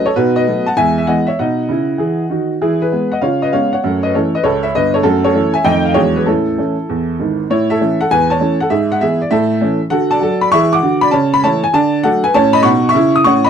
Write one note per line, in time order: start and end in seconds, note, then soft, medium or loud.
0.06 0.16 A4 medium
0.06 0.16 C#5 medium
0.16 0.42 B2 medium
0.16 0.34 D#4 soft
0.16 0.35 F#4 medium
0.16 0.35 B4 medium
0.36 0.65 B4 medium
0.36 0.67 D#5 medium
0.47 0.64 F#3 soft
0.47 0.64 A3 soft
0.47 0.64 B3 soft
0.66 0.77 F#5 medium
0.66 0.77 A5 medium
0.77 1.03 E2 medium
0.77 0.95 G#3 soft
0.77 0.97 E5 medium
0.77 0.98 G#5 loud
0.98 1.08 E5 medium
1.07 1.24 E3 soft
1.07 1.25 G#3 soft
1.07 1.25 B3 soft
1.07 1.27 D#5 medium
1.07 1.28 F#5 medium
1.27 1.38 C#5 soft
1.27 1.38 E5 medium
1.39 1.63 B2 medium
1.39 1.65 D#4 soft
1.39 2.47 D#5 medium
1.39 2.50 F#5 medium
1.69 1.93 C#3 medium
1.69 1.95 E4 soft
1.98 2.23 E3 medium
1.98 2.24 G#4 soft
2.30 2.54 D#3 soft
2.30 2.55 F#4 soft
2.62 2.87 E3 medium
2.62 2.80 E4 medium
2.62 2.81 G#4 medium
2.82 3.10 G#4 soft
2.82 3.12 B4 medium
2.92 3.08 G#3 soft
2.92 3.09 B3 soft
3.12 3.22 D#5 soft
3.12 3.22 F#5 medium
3.21 3.48 C#3 medium
3.21 3.40 F4 soft
3.21 3.41 C#5 medium
3.21 3.42 F5 medium
3.42 3.52 B4 soft
3.42 3.53 D#5 medium
3.52 3.69 G#3 soft
3.52 3.70 B3 soft
3.52 3.70 C#4 soft
3.52 3.72 C#5 medium
3.52 3.72 F5 medium
3.73 4.02 C#5 soft
3.73 4.03 F#5 medium
3.84 4.09 F#2 medium
3.84 4.02 A3 soft
4.03 4.14 B4 medium
4.03 4.13 D#5 medium
4.15 4.31 E3 soft
4.15 4.31 A3 soft
4.15 4.32 C#4 soft
4.15 4.33 A4 soft
4.15 4.34 C#5 medium
4.35 4.45 B4 medium
4.35 4.45 D#5 medium
4.43 4.70 C#2 medium
4.43 4.63 A4 medium
4.43 4.63 C#5 medium
4.63 4.74 C#5 medium
4.63 4.74 E5 medium
4.75 4.99 G1 medium
4.75 4.99 G2 medium
4.75 4.94 B4 medium
4.75 4.95 D#5 medium
4.94 5.02 A4 medium
4.94 5.05 C#5 medium
5.03 5.30 F#2 medium
5.03 5.22 A3 soft
5.03 5.23 F#4 medium
5.03 5.24 A4 medium
5.24 5.53 A4 medium
5.24 5.55 C#5 medium
5.34 5.51 E3 soft
5.34 5.52 A3 soft
5.34 5.52 C#4 soft
5.54 5.65 E5 medium
5.54 5.65 G#5 medium
5.64 5.91 F2 medium
5.64 5.81 D#3 soft
5.64 5.83 A3 medium
5.64 5.82 D#4 soft
5.64 5.84 D#5 medium
5.64 5.86 G5 medium
5.85 5.96 F5 medium
5.94 6.21 E2 medium
5.94 6.12 F#3 soft
5.94 6.13 G#3 soft
5.94 6.13 D4 soft
5.94 6.14 G#4 medium
5.94 6.15 C#5 loud
6.16 6.27 G#4 soft
6.16 6.26 B4 medium
6.26 6.53 A2 medium
6.26 6.45 C#4 soft
6.26 7.35 E4 soft
6.26 7.38 A4 medium
6.58 6.75 E3 soft
6.58 6.74 A3 soft
6.58 6.75 C#4 soft
6.89 7.15 E2 medium
7.20 7.43 G#1 soft
7.20 7.43 G#2 soft
7.50 7.75 A2 medium
7.50 7.69 E4 medium
7.50 7.70 C#5 medium
7.70 7.98 A4 medium
7.70 8.00 E5 medium
7.81 7.97 E3 soft
7.81 7.97 A3 soft
7.81 7.97 C#4 soft
8.01 8.10 A4 medium
8.01 8.10 F#5 medium
8.11 8.36 E2 medium
8.11 8.30 B4 medium
8.11 8.31 G#5 loud
8.30 8.59 C#5 medium
8.30 8.60 A5 medium
8.39 8.56 E3 soft
8.39 8.57 A3 soft
8.39 8.57 C#4 soft
8.60 8.71 A4 medium
8.60 8.71 F#5 medium
8.70 8.96 G#2 medium
8.70 8.89 G#4 medium
8.70 8.90 E5 medium
8.92 9.01 F#5 medium
9.01 9.17 E3 soft
9.01 9.18 B3 soft
9.01 9.18 E4 soft
9.01 9.20 G#4 medium
9.01 9.21 E5 medium
9.21 9.31 D5 medium
9.31 9.57 A2 medium
9.31 9.78 A4 medium
9.31 9.81 E5 medium
9.61 9.78 E3 soft
9.61 9.78 A3 soft
9.61 9.78 C#4 soft
9.90 10.15 D3 medium
9.90 10.16 F#4 medium
9.90 10.10 A4 medium
9.90 10.11 F#5 medium
10.11 10.40 D5 medium
10.11 10.42 A5 medium
10.20 10.45 F#3 medium
10.20 10.47 A4 medium
10.41 10.52 D5 medium
10.41 10.52 B5 medium
10.52 10.76 E3 medium
10.52 10.78 G#4 medium
10.52 10.72 E5 medium
10.52 10.72 C#6 loud
10.73 11.01 F#5 medium
10.73 11.03 D6 medium
10.82 11.07 D3 medium
10.82 11.08 F#4 medium
11.01 11.13 D5 medium
11.01 11.13 B5 medium
11.11 11.38 C#3 medium
11.11 11.32 C#5 medium
11.11 11.33 A5 medium
11.34 11.44 B5 medium
11.43 11.60 E3 soft
11.43 11.61 A3 soft
11.43 11.61 E4 medium
11.43 11.63 C#5 medium
11.43 11.64 A5 medium
11.64 11.74 G#5 medium
11.73 12.00 D3 medium
11.73 12.03 D5 medium
11.73 12.04 A5 loud
12.03 12.21 F#3 soft
12.03 12.21 A3 soft
12.03 12.21 D4 medium
12.03 12.23 A4 medium
12.03 12.24 F#5 medium
12.24 12.34 B4 medium
12.24 12.35 G#5 loud
12.34 12.59 A2 medium
12.34 12.60 C#4 medium
12.34 12.54 C#5 medium
12.34 12.55 A5 loud
12.53 12.64 D#5 medium
12.53 12.64 B5 loud
12.63 12.88 B2 medium
12.63 12.89 D#4 medium
12.63 12.88 F#5 medium
12.63 12.87 C#6 loud
12.89 13.14 E5 medium
12.89 13.15 C#6 loud
12.94 13.19 C#3 medium
12.94 13.20 E4 medium
13.15 13.26 D#6 medium
13.24 13.50 A2 medium
13.24 13.50 C#4 medium
13.24 13.44 F#5 medium
13.24 13.45 C#6 loud
13.45 13.50 D#5 medium
13.45 13.50 B5 medium